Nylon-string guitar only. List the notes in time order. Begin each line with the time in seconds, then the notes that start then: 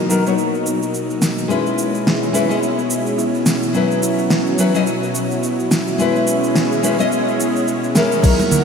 0.09 F#3 B3 D#4 A#4
0.26 F#3 B3 D#4 C#5
1.48 G#3 C#4 E4 B4
2.33 G#3 C#4 E4 B4
2.49 G#3 C#4 E4 D#5
3.73 F#3 C#4 E4 B4
4.59 F#3 C#4 E4 B4
4.74 F#3 C#4 E4 D#5
5.98 G#3 C#4 E4 B4
6.83 G#3 C#4 E4 B4
6.99 G#3 C#4 E4 D#5
7.95 G#3 C#4 E4 A#4
8.22 F#3 D#4 A#4